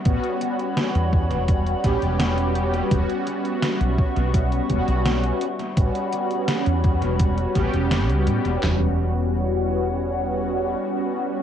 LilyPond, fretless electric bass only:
\new Staff \with { instrumentName = "Fretless electric bass" } { \clef bass \time 4/4 \key e \dorian \tempo 4 = 84 a,,16 r4 e,8 e,,8 r16 a,,16 e,,4 r16 | e,,16 r4 b,,16 r16 b,,8 r16 e,,16 b,,8 r8. | a,,16 r4 e,8 e,,8 r16 a,,16 e,,8 cis,16 a,16 e,,16 | e,,2. r4 | }